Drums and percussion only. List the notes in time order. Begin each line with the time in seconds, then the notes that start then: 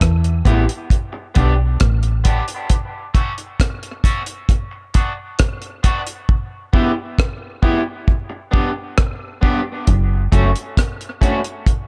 0.01 kick, cross-stick, closed hi-hat
0.24 closed hi-hat
0.45 kick, closed hi-hat
0.69 closed hi-hat
0.90 kick, closed hi-hat
1.35 kick, closed hi-hat
1.80 kick, cross-stick, closed hi-hat
2.03 closed hi-hat
2.25 kick, closed hi-hat
2.48 closed hi-hat
2.70 kick, closed hi-hat
3.15 kick, closed hi-hat
3.38 closed hi-hat
3.60 kick, cross-stick, closed hi-hat
3.83 closed hi-hat
4.04 kick, closed hi-hat
4.26 closed hi-hat
4.49 kick, closed hi-hat
4.94 kick, closed hi-hat
5.39 kick, cross-stick, closed hi-hat
5.62 closed hi-hat
5.84 kick, closed hi-hat
6.07 closed hi-hat
6.29 kick
6.73 kick
7.19 kick, cross-stick
7.63 kick
8.08 kick
8.54 kick
8.98 kick, cross-stick
9.43 kick
9.87 kick, closed hi-hat
10.32 kick, closed hi-hat
10.56 closed hi-hat
10.77 kick, cross-stick, closed hi-hat
11.01 closed hi-hat
11.22 kick, closed hi-hat
11.44 closed hi-hat
11.66 kick, closed hi-hat